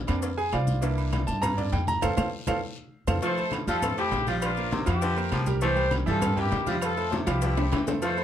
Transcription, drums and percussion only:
0.07 cowbell, high conga, low agogo, short guiro, claves, maracas
0.22 cowbell, high conga, long guiro, maracas
0.38 high conga, low agogo, maracas
0.52 cowbell, high conga, low agogo, short guiro, claves, maracas
0.67 high conga, short guiro, maracas
0.82 cowbell, high conga, low agogo, long guiro, maracas
0.98 high conga, low agogo, maracas
1.12 cowbell, high conga, low agogo, short guiro, claves, maracas
1.27 high conga, short guiro, maracas
1.42 cowbell, high conga, low conga, low agogo, long guiro, claves, maracas
1.58 cowbell, high conga, low conga, maracas
1.72 cowbell, high conga, low timbale, low agogo, short guiro, maracas
1.87 high conga, short guiro, maracas
2.01 cowbell, high conga, high timbale, long guiro, claves, maracas
2.17 cowbell, high conga, high timbale, long guiro, claves, maracas
2.47 cowbell, high conga, high timbale, long guiro, claves, maracas
3.07 cowbell, high conga, high timbale, long guiro, claves, maracas
3.22 cowbell, high conga, low agogo, long guiro, maracas
3.37 high conga, low agogo, maracas
3.52 cowbell, high conga, low agogo, short guiro, claves, maracas
3.68 high conga, short guiro, maracas
3.82 cowbell, high conga, low conga, low agogo, long guiro, claves, maracas
3.97 cowbell, high conga, maracas
4.12 cowbell, high conga, low timbale, low agogo, short guiro, maracas
4.27 high conga, short guiro, maracas
4.42 cowbell, high conga, low agogo, long guiro, claves, maracas
4.57 high conga, low agogo, maracas
4.71 cowbell, high conga, short guiro, maracas
4.86 cowbell, high conga, low agogo, short guiro, claves, maracas
5.01 cowbell, high conga, long guiro, maracas
5.16 high conga, low agogo, maracas
5.32 cowbell, high conga, low timbale, low agogo, short guiro, claves, maracas
5.46 high conga, short guiro, maracas
5.61 cowbell, high conga, low agogo, long guiro, maracas
5.76 low agogo, maracas
5.91 cowbell, high conga, low agogo, short guiro, claves, maracas
6.07 high conga, short guiro, maracas
6.22 cowbell, high conga, low conga, low agogo, long guiro, claves, maracas
6.37 cowbell, high conga, low conga, maracas
6.52 cowbell, high conga, low timbale, low agogo, short guiro, maracas
6.67 high conga, short guiro, maracas
6.81 cowbell, high conga, low agogo, long guiro, claves, maracas
6.97 high conga, low agogo, maracas
7.11 cowbell, high bongo, high conga, short guiro, maracas
7.27 cowbell, high bongo, high conga, low agogo, short guiro, claves, maracas
7.42 cowbell, high bongo, high conga, long guiro, maracas
7.57 low bongo, high timbale, low agogo, maracas
7.72 cowbell, low bongo, high conga, high timbale, low agogo, short guiro, claves, maracas
7.87 low bongo, high conga, low timbale, short guiro, maracas
8.01 cowbell, high conga, low agogo, long guiro, maracas
8.17 high conga, low agogo, maracas

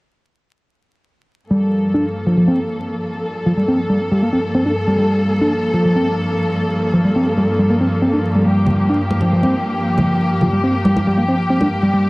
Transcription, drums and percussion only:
8.67 low conga
9.11 high conga
9.21 high conga
9.43 high conga
9.98 high conga, low conga
10.41 low conga
10.85 high conga
10.96 high conga
11.61 high conga

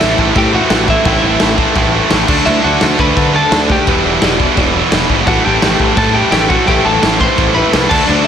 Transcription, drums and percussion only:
0.01 snare, crash
0.18 kick
0.36 kick, crash
0.70 snare, crash
0.88 kick
1.05 kick, crash
1.40 snare, crash
1.58 kick
1.76 kick, crash
2.11 snare, crash
2.28 kick, crash
2.47 crash
2.81 snare, crash
2.99 kick
3.17 kick, crash
3.52 snare, crash
3.70 kick
3.87 kick, crash
4.22 snare, crash
4.40 kick
4.57 kick, crash
4.92 snare, crash
5.10 kick
5.27 kick, crash
5.62 snare, crash
5.80 kick
5.97 kick, crash
6.32 snare, crash
6.50 kick
6.68 kick, crash
7.03 snare, crash
7.21 kick
7.38 kick, crash
7.73 snare, crash
7.91 kick, crash
8.09 crash

